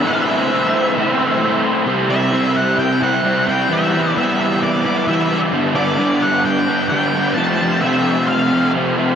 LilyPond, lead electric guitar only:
\new Staff \with { instrumentName = "Lead electric guitar" } { \time 4/4 \key c \lydian \tempo 4 = 131 e''2.~ e''8 r8 | r8 e''4 fis''8 g''8 fis''4 g''8 | e''4 e''4 d''8 d''8 e''8. r16 | r8 d''4 fis''8 g''4 g''4 |
a''4 e''4 f''4 r4 | }